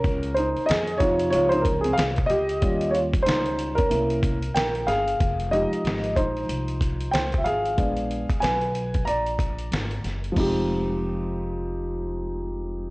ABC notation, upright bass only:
X:1
M:4/4
L:1/16
Q:"Swing 16ths" 1/4=93
K:Fm
V:1 name="Upright bass" clef=bass
D,,3 z F,,4 D,,4 C,,2 D,,2 | E,,3 z D,,4 C,,4 B,,,2 G,,,2 | F,,,3 z A,,,2 B,,,2 C,,4 D,,2 A,,,2 | B,,,3 z _C,,4 B,,,4 A,,,2 _G,,,2 |
F,,,16 |]